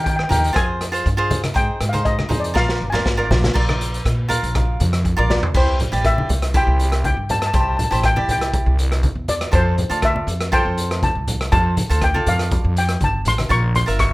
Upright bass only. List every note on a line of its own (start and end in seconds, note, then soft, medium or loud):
0.00 0.23 D#3 loud
0.31 0.52 D#2 medium
0.56 0.98 F2 medium
1.06 1.48 G2 medium
1.56 1.67 G#2 medium
1.81 2.23 G#2 loud
2.31 2.52 F2 medium
2.55 2.77 A#1 medium
2.81 3.04 G1 medium
3.06 3.28 G#1 medium
3.31 3.53 A#1 medium
3.56 3.98 A#1 medium
4.05 4.37 A#2 medium
4.43 4.74 A#1 medium
4.80 5.12 F2 medium
5.18 5.39 A#1 medium
5.55 5.87 C2 medium
5.93 6.24 A1 loud
6.29 6.61 C2 medium
6.67 7.09 C2 medium
7.17 7.48 G2 medium
7.54 7.86 C2 loud
7.92 8.23 A1 loud
8.28 8.60 C2 medium
8.66 9.08 C2 loud
9.15 9.47 E2 medium
9.53 9.85 F2 medium
9.90 10.22 D2 loud
10.27 10.59 F2 medium
10.65 11.07 F2 loud
11.15 11.46 C2 medium
11.52 11.84 F2 loud
11.90 12.21 D2 medium
12.27 12.58 F2 medium
12.64 12.95 F2 loud
13.00 13.23 G1 medium
13.25 13.48 A1 medium
13.50 13.82 A#1 loud
13.88 14.13 G1 medium